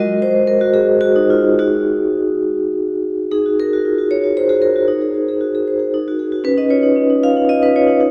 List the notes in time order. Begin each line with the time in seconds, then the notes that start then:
Already playing: G#3 F#4 A#4 D#5
0.22 C5
0.47 A#4
0.61 F#4
0.74 G#4
1.01 F#4
1.16 D#4
1.30 F4
1.59 D#4 F#4 G#4
3.31 D#4 G#4
3.46 F#4
3.59 G#4 A#4
3.73 F#4
3.85 F4
3.98 F#4
4.11 G#4 C#5
4.24 F#4
4.37 G#4 C5
4.49 F#4 G#4
4.62 G#4 A#4
4.76 F#4
4.88 D#4
5.01 G#4
5.14 C5
5.28 G#4
5.41 F#4
5.55 G#4
5.68 C5
5.80 G#4
5.94 D#4
6.08 F#4
6.19 G#4
6.32 F#4
6.44 C#4 B4
6.57 D#4 D#5
6.70 F4 C#5
6.83 D#4
6.96 C#4
7.10 D#4
7.23 F4 F5
7.37 D#4
7.49 F4 D#5
7.62 D#4 B4
7.76 F4 C#5
7.87 D#4
8.01 D#4